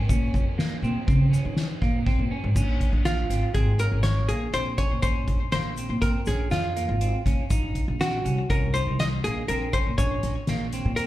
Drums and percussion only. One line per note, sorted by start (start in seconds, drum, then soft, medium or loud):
0.09 kick loud
0.09 ride medium
0.09 shaker medium
0.34 kick medium
0.34 ride medium
0.34 shaker soft
0.59 snare loud
0.59 ride medium
0.59 shaker soft
0.83 ride medium
0.83 shaker soft
1.08 kick loud
1.08 ride medium
1.08 shaker soft
1.32 snare soft
1.32 ride medium
1.32 shaker soft
1.56 snare loud
1.56 ride medium
1.56 shaker soft
1.82 kick medium
1.82 snare soft
1.82 ride medium
2.06 kick loud
2.06 snare soft
2.06 ride medium
2.31 ride medium
2.56 kick loud
2.56 crash loud
2.56 shaker medium
2.81 kick medium
2.81 closed hi-hat medium
3.05 snare loud
3.05 closed hi-hat medium
3.05 shaker soft
3.30 snare soft
3.30 closed hi-hat medium
3.30 shaker soft
3.55 kick medium
3.55 closed hi-hat medium
3.79 closed hi-hat medium
3.79 shaker soft
4.03 snare medium
4.03 closed hi-hat medium
4.03 shaker soft
4.29 closed hi-hat medium
4.54 snare soft
4.54 closed hi-hat medium
4.78 kick medium
4.78 closed hi-hat medium
5.03 kick loud
5.03 closed hi-hat medium
5.03 shaker medium
5.28 kick medium
5.28 closed hi-hat medium
5.52 snare loud
5.52 closed hi-hat medium
5.52 shaker soft
5.76 closed hi-hat medium
5.76 shaker soft
6.02 kick loud
6.02 closed hi-hat medium
6.26 snare soft
6.26 closed hi-hat medium
6.26 shaker soft
6.50 snare loud
6.50 closed hi-hat medium
6.50 shaker soft
6.77 snare soft
6.77 closed hi-hat medium
7.01 closed hi-hat medium
7.26 kick medium
7.26 snare soft
7.26 closed hi-hat medium
7.50 kick loud
7.50 closed hi-hat medium
7.50 shaker medium
7.75 kick medium
7.75 closed hi-hat medium
8.00 snare loud
8.00 closed hi-hat medium
8.00 shaker soft
8.26 closed hi-hat medium
8.26 shaker soft
8.50 kick medium
8.50 closed hi-hat medium
8.75 closed hi-hat medium
8.75 shaker soft
8.99 snare medium
8.99 closed hi-hat medium
8.99 shaker soft
9.25 snare soft
9.25 closed hi-hat medium
9.49 closed hi-hat medium
9.73 kick medium
9.73 closed hi-hat medium
9.98 kick loud
9.98 closed hi-hat medium
9.98 shaker medium
10.23 snare soft
10.23 closed hi-hat medium
10.47 snare loud
10.47 closed hi-hat medium
10.72 snare soft
10.72 closed hi-hat medium
10.72 shaker soft
10.97 snare soft
10.97 closed hi-hat medium